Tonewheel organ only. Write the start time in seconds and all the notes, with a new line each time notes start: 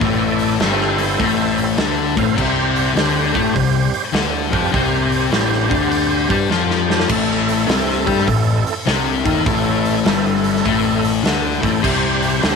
0.03 C4 E4 A4 D5
0.62 C4 E4 A4 C5
1.58 B5
1.70 A5
1.81 E5
2.18 C4 E4 A4 C5 F5
2.40 G3 C4 G4 C5
2.98 G3 C4 G4 C5
4.53 G3 C4 G4 B4
4.73 G3 C4 G4 C5
5.31 G3 C4 G4 C5
6.88 G3 C4 G4 C5
7.08 A3 C4 E4 A4
7.66 A3 C4 E4 A4
9.26 A3 C4 E4 A4
9.46 A3 C4 E4 A4
10.05 A3 C4 E4 A4
11.26 E5
11.45 G5
11.62 A3 C4 E4 A4
11.81 G3 C4 G4 C5
12.39 G3 C4 G4 C5